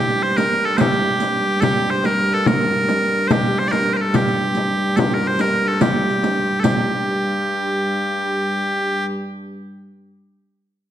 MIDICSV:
0, 0, Header, 1, 5, 480
1, 0, Start_track
1, 0, Key_signature, -2, "minor"
1, 0, Tempo, 279330
1, 1351, Time_signature, 6, 3, 24, 8
1, 9503, Tempo, 276116
1, 18852, End_track
2, 0, Start_track
2, 0, Title_t, "Bagpipes"
2, 0, Program_c, 0, 109
2, 0, Note_on_c, 0, 67, 91
2, 390, Note_off_c, 0, 67, 0
2, 390, Note_on_c, 0, 72, 100
2, 634, Note_off_c, 0, 72, 0
2, 634, Note_on_c, 0, 70, 107
2, 1115, Note_off_c, 0, 70, 0
2, 1115, Note_on_c, 0, 69, 90
2, 1322, Note_off_c, 0, 69, 0
2, 1322, Note_on_c, 0, 72, 91
2, 1388, Note_off_c, 0, 72, 0
2, 1388, Note_on_c, 0, 67, 91
2, 2763, Note_off_c, 0, 67, 0
2, 2763, Note_on_c, 0, 69, 99
2, 2818, Note_off_c, 0, 69, 0
2, 2818, Note_on_c, 0, 67, 99
2, 3270, Note_off_c, 0, 67, 0
2, 3270, Note_on_c, 0, 72, 91
2, 3533, Note_off_c, 0, 72, 0
2, 3533, Note_on_c, 0, 70, 109
2, 4013, Note_off_c, 0, 70, 0
2, 4013, Note_on_c, 0, 69, 89
2, 4242, Note_off_c, 0, 69, 0
2, 4242, Note_on_c, 0, 70, 103
2, 5632, Note_off_c, 0, 70, 0
2, 5632, Note_on_c, 0, 72, 92
2, 5706, Note_off_c, 0, 72, 0
2, 5706, Note_on_c, 0, 67, 92
2, 6166, Note_off_c, 0, 67, 0
2, 6166, Note_on_c, 0, 72, 91
2, 6324, Note_off_c, 0, 72, 0
2, 6324, Note_on_c, 0, 74, 106
2, 6386, Note_off_c, 0, 74, 0
2, 6386, Note_on_c, 0, 70, 106
2, 6758, Note_off_c, 0, 70, 0
2, 6758, Note_on_c, 0, 72, 59
2, 6819, Note_off_c, 0, 72, 0
2, 6819, Note_on_c, 0, 70, 59
2, 6888, Note_off_c, 0, 70, 0
2, 6888, Note_on_c, 0, 69, 75
2, 7146, Note_off_c, 0, 69, 0
2, 7146, Note_on_c, 0, 67, 81
2, 8533, Note_off_c, 0, 67, 0
2, 8533, Note_on_c, 0, 69, 86
2, 8589, Note_off_c, 0, 69, 0
2, 8589, Note_on_c, 0, 67, 86
2, 8829, Note_off_c, 0, 67, 0
2, 8829, Note_on_c, 0, 70, 78
2, 9062, Note_off_c, 0, 70, 0
2, 9062, Note_on_c, 0, 72, 101
2, 9295, Note_off_c, 0, 72, 0
2, 9295, Note_on_c, 0, 70, 103
2, 9753, Note_off_c, 0, 70, 0
2, 9753, Note_on_c, 0, 69, 83
2, 10003, Note_off_c, 0, 69, 0
2, 10003, Note_on_c, 0, 67, 73
2, 11362, Note_off_c, 0, 67, 0
2, 11362, Note_on_c, 0, 69, 76
2, 11434, Note_off_c, 0, 69, 0
2, 11434, Note_on_c, 0, 67, 76
2, 15635, Note_off_c, 0, 67, 0
2, 18852, End_track
3, 0, Start_track
3, 0, Title_t, "Hurdy-gurdy"
3, 0, Program_c, 1, 110
3, 0, Note_on_c, 1, 43, 63
3, 5703, Note_off_c, 1, 43, 0
3, 5703, Note_on_c, 1, 43, 69
3, 11441, Note_off_c, 1, 43, 0
3, 11441, Note_on_c, 1, 43, 71
3, 15686, Note_off_c, 1, 43, 0
3, 18852, End_track
4, 0, Start_track
4, 0, Title_t, "Frame drum"
4, 167, Note_on_c, 9, 64, 24
4, 339, Note_off_c, 9, 64, 0
4, 655, Note_on_c, 9, 64, 66
4, 827, Note_off_c, 9, 64, 0
4, 899, Note_on_c, 9, 64, 28
4, 1071, Note_off_c, 9, 64, 0
4, 1389, Note_on_c, 9, 64, 86
4, 1561, Note_off_c, 9, 64, 0
4, 1635, Note_on_c, 9, 64, 25
4, 1807, Note_off_c, 9, 64, 0
4, 2105, Note_on_c, 9, 64, 59
4, 2276, Note_off_c, 9, 64, 0
4, 2342, Note_on_c, 9, 64, 24
4, 2514, Note_off_c, 9, 64, 0
4, 2799, Note_on_c, 9, 64, 78
4, 2971, Note_off_c, 9, 64, 0
4, 3038, Note_on_c, 9, 64, 26
4, 3210, Note_off_c, 9, 64, 0
4, 3505, Note_on_c, 9, 64, 61
4, 3677, Note_off_c, 9, 64, 0
4, 3751, Note_on_c, 9, 64, 27
4, 3923, Note_off_c, 9, 64, 0
4, 4233, Note_on_c, 9, 64, 89
4, 4405, Note_off_c, 9, 64, 0
4, 4959, Note_on_c, 9, 64, 68
4, 5131, Note_off_c, 9, 64, 0
4, 5465, Note_on_c, 9, 64, 30
4, 5636, Note_off_c, 9, 64, 0
4, 5681, Note_on_c, 9, 64, 89
4, 5853, Note_off_c, 9, 64, 0
4, 5920, Note_on_c, 9, 64, 31
4, 6092, Note_off_c, 9, 64, 0
4, 6401, Note_on_c, 9, 64, 66
4, 6573, Note_off_c, 9, 64, 0
4, 6664, Note_on_c, 9, 64, 29
4, 6836, Note_off_c, 9, 64, 0
4, 7124, Note_on_c, 9, 64, 87
4, 7296, Note_off_c, 9, 64, 0
4, 7379, Note_on_c, 9, 64, 27
4, 7550, Note_off_c, 9, 64, 0
4, 7859, Note_on_c, 9, 64, 65
4, 8031, Note_off_c, 9, 64, 0
4, 8102, Note_on_c, 9, 64, 29
4, 8274, Note_off_c, 9, 64, 0
4, 8567, Note_on_c, 9, 64, 95
4, 8739, Note_off_c, 9, 64, 0
4, 8797, Note_on_c, 9, 64, 28
4, 8968, Note_off_c, 9, 64, 0
4, 9269, Note_on_c, 9, 64, 62
4, 9441, Note_off_c, 9, 64, 0
4, 9520, Note_on_c, 9, 64, 27
4, 9694, Note_off_c, 9, 64, 0
4, 9993, Note_on_c, 9, 64, 84
4, 10167, Note_off_c, 9, 64, 0
4, 10238, Note_on_c, 9, 64, 26
4, 10412, Note_off_c, 9, 64, 0
4, 10482, Note_on_c, 9, 64, 27
4, 10656, Note_off_c, 9, 64, 0
4, 10727, Note_on_c, 9, 64, 66
4, 10900, Note_off_c, 9, 64, 0
4, 10986, Note_on_c, 9, 64, 23
4, 11160, Note_off_c, 9, 64, 0
4, 11231, Note_on_c, 9, 64, 26
4, 11405, Note_off_c, 9, 64, 0
4, 11444, Note_on_c, 9, 64, 88
4, 11618, Note_off_c, 9, 64, 0
4, 18852, End_track
5, 0, Start_track
5, 0, Title_t, "Riq"
5, 164, Note_on_c, 9, 54, 20
5, 336, Note_off_c, 9, 54, 0
5, 648, Note_on_c, 9, 54, 51
5, 820, Note_off_c, 9, 54, 0
5, 1339, Note_on_c, 9, 54, 73
5, 1511, Note_off_c, 9, 54, 0
5, 1594, Note_on_c, 9, 54, 24
5, 1766, Note_off_c, 9, 54, 0
5, 2063, Note_on_c, 9, 54, 52
5, 2235, Note_off_c, 9, 54, 0
5, 2781, Note_on_c, 9, 54, 60
5, 2953, Note_off_c, 9, 54, 0
5, 3036, Note_on_c, 9, 54, 18
5, 3208, Note_off_c, 9, 54, 0
5, 3513, Note_on_c, 9, 54, 47
5, 3685, Note_off_c, 9, 54, 0
5, 4249, Note_on_c, 9, 54, 68
5, 4421, Note_off_c, 9, 54, 0
5, 4484, Note_on_c, 9, 54, 21
5, 4655, Note_off_c, 9, 54, 0
5, 4969, Note_on_c, 9, 54, 47
5, 5141, Note_off_c, 9, 54, 0
5, 5220, Note_on_c, 9, 54, 20
5, 5392, Note_off_c, 9, 54, 0
5, 5682, Note_on_c, 9, 54, 62
5, 5854, Note_off_c, 9, 54, 0
5, 5928, Note_on_c, 9, 54, 20
5, 6100, Note_off_c, 9, 54, 0
5, 6397, Note_on_c, 9, 54, 47
5, 6569, Note_off_c, 9, 54, 0
5, 7112, Note_on_c, 9, 54, 59
5, 7284, Note_off_c, 9, 54, 0
5, 7353, Note_on_c, 9, 54, 18
5, 7525, Note_off_c, 9, 54, 0
5, 7814, Note_on_c, 9, 54, 45
5, 7986, Note_off_c, 9, 54, 0
5, 8537, Note_on_c, 9, 54, 59
5, 8709, Note_off_c, 9, 54, 0
5, 8782, Note_on_c, 9, 54, 20
5, 8954, Note_off_c, 9, 54, 0
5, 9260, Note_on_c, 9, 54, 52
5, 9432, Note_off_c, 9, 54, 0
5, 9989, Note_on_c, 9, 54, 76
5, 10163, Note_off_c, 9, 54, 0
5, 10484, Note_on_c, 9, 54, 23
5, 10658, Note_off_c, 9, 54, 0
5, 10731, Note_on_c, 9, 54, 55
5, 10905, Note_off_c, 9, 54, 0
5, 11431, Note_on_c, 9, 54, 77
5, 11605, Note_off_c, 9, 54, 0
5, 18852, End_track
0, 0, End_of_file